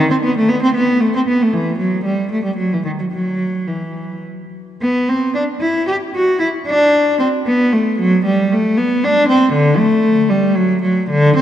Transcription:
0.11 0.16 C4 medium
0.24 0.36 B3 medium
0.37 0.49 A3 medium
0.49 0.61 B3 medium
0.62 0.74 C4 medium
0.75 1.00 B3 medium
1.00 1.13 A3 medium
1.15 1.20 C4 medium
1.28 1.40 B3 medium
1.42 1.54 A3 medium
1.53 1.78 E3 medium
1.79 2.04 F#3 medium
2.05 2.30 G3 medium
2.31 2.44 A3 medium
2.44 2.57 G3 medium
2.56 2.70 F#3 medium
2.73 2.85 E3 medium
2.85 2.90 D#3 medium
2.99 3.05 F#3 medium
3.12 3.67 F#3 medium
3.68 4.24 E3 medium
4.82 5.07 B3 medium
5.08 5.35 C4 medium
5.35 5.43 D4 medium
5.60 5.87 E4 medium
5.87 5.95 G4 medium
6.15 6.41 F#4 medium
6.40 6.48 E4 medium
6.67 7.19 D4 medium
7.19 7.27 C4 medium
7.46 7.72 B3 medium
7.73 7.99 A3 medium
7.99 8.25 F#3 medium
8.25 8.51 G3 medium
8.52 8.78 A3 medium
8.77 9.03 B3 medium
9.04 9.29 D4 loud
9.29 9.53 C4 medium
9.53 9.78 D3 loud
9.78 10.29 A3 loud
10.29 10.55 G3 medium
10.56 10.81 F#3 medium
10.82 11.09 F#3 medium
11.11 11.37 D3 loud
11.37 11.42 C4 loud

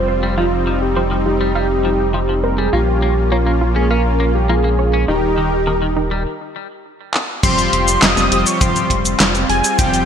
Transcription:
0.00 2.70 F1 medium
0.00 2.69 G3 medium
0.00 2.69 C4 medium
0.00 0.35 F4 medium
0.00 0.34 C5 loud
0.08 0.25 C5 medium
0.23 0.34 G3 medium
0.38 0.45 F3 medium
0.38 2.71 D#4 medium
0.38 0.62 F4 loud
0.38 0.79 F4 loud
0.67 0.78 F3 medium
0.82 1.23 G4 loud
0.96 1.01 F3 medium
0.96 1.13 C5 medium
1.11 1.16 F3 medium
1.26 1.42 F4 medium
1.26 2.40 G4 loud
1.41 1.52 G3 medium
1.55 1.66 G3 medium
1.55 1.72 F5 medium
1.85 1.89 F3 medium
2.14 2.19 F3 medium
2.14 2.24 F4 medium
2.29 2.33 F3 medium
2.43 2.57 A#4 medium
2.43 2.60 C5 medium
2.58 2.69 G3 medium
2.58 2.74 G#4 medium
2.73 5.05 A#1 medium
2.73 5.06 A#3 medium
2.73 2.80 A#3 medium
2.73 5.06 C#4 medium
2.73 2.98 F4 loud
2.73 5.06 F4 medium
2.73 3.33 G4 loud
3.02 3.13 A#3 medium
3.32 3.36 A#3 medium
3.32 3.75 F4 medium
3.32 3.48 C#5 medium
3.46 3.51 A#3 medium
3.61 3.78 F4 medium
3.76 3.87 C#4 medium
3.76 3.90 G#4 medium
3.90 4.02 C#4 medium
3.90 4.32 A#4 loud
3.90 4.07 F5 medium
4.20 4.24 A#3 medium
4.35 4.51 G4 medium
4.49 4.54 A#3 medium
4.49 4.59 F4 medium
4.49 5.10 G#4 medium
4.64 4.69 A#3 medium
4.79 4.95 C#5 medium
4.94 5.05 C#4 medium
5.08 6.26 D#1 medium
5.08 6.25 D#3 medium
5.08 5.16 D#3 medium
5.08 6.25 D#4 medium
5.08 5.33 D#4 loud
5.08 6.85 G4 loud
5.08 6.25 G4 medium
5.08 6.25 A#4 medium
5.38 5.49 D#3 medium
5.67 5.72 D#3 medium
5.67 5.83 A#4 medium
5.82 5.86 D#3 medium
5.96 6.13 D#4 medium
6.11 6.22 G3 medium
7.14 clap medium
7.43 7.68 F1 loud
7.43 8.28 F3 medium
7.43 10.05 G3 medium
7.43 8.28 G3 medium
7.43 8.28 C4 medium
7.43 10.05 C4 medium
7.43 8.28 F4 medium
7.43 10.05 F4 medium
7.43 8.28 G4 medium
7.43 7.71 C6 loud
7.43 kick loud
7.43 closed hi-hat loud
7.43 crash loud
7.43 cabasa soft
7.58 closed hi-hat soft
7.58 cabasa soft
7.73 7.98 F1 loud
7.73 8.04 C6 loud
7.73 closed hi-hat medium
7.88 closed hi-hat soft
7.88 cabasa medium
8.02 8.15 F1 loud
8.02 8.48 D#6 loud
8.02 snare loud
8.02 clap loud
8.02 closed hi-hat loud
8.02 cabasa soft
8.17 8.30 F1 medium
8.17 snare soft
8.17 closed hi-hat soft
8.17 cabasa soft
8.32 8.44 F1 medium
8.32 8.88 F3 medium
8.32 8.88 G3 medium
8.32 8.88 C4 medium
8.32 8.88 F4 medium
8.32 8.88 G4 loud
8.32 closed hi-hat medium
8.47 8.63 C#6 medium
8.47 closed hi-hat soft
8.47 cabasa medium
8.61 8.74 F1 medium
8.61 9.20 C6 loud
8.61 kick loud
8.61 closed hi-hat loud
8.61 cabasa soft
8.76 closed hi-hat soft
8.76 cabasa soft
8.90 9.15 F1 medium
8.90 kick medium
8.90 closed hi-hat medium
9.05 closed hi-hat soft
9.05 cabasa medium
9.20 9.45 F1 loud
9.20 snare loud
9.20 clap loud
9.20 closed hi-hat loud
9.20 cabasa soft
9.35 closed hi-hat soft
9.35 cabasa soft
9.49 9.62 F1 loud
9.49 9.77 G#5 loud
9.49 open hi-hat medium
9.64 closed hi-hat soft
9.64 cabasa medium
9.79 10.04 F1 loud
9.79 10.05 F3 medium
9.79 10.05 G3 medium
9.79 10.05 C4 medium
9.79 10.05 F4 medium
9.79 10.05 G4 medium
9.79 10.05 G5 loud
9.79 kick loud
9.79 closed hi-hat loud
9.79 cabasa soft
9.94 closed hi-hat soft
9.94 cabasa soft

